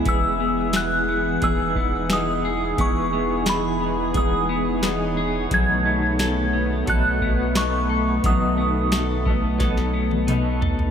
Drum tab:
HH |x---x---x---x---|x---x---x---x---|x---x---x---x---|x---x---x---x---|
TB |----x-------x---|----x-------x---|----x-------x---|----x-----------|
SD |----o-------o---|----o-------o---|----o-------o---|----o---oo------|
T1 |----------------|----------------|----------------|-----------o----|
T2 |----------------|----------------|----------------|------------o---|
FT |----------------|----------------|----------------|--------------oo|
BD |o-------o-o-----|o-------o-------|o-------o-o-----|o-----o-o-------|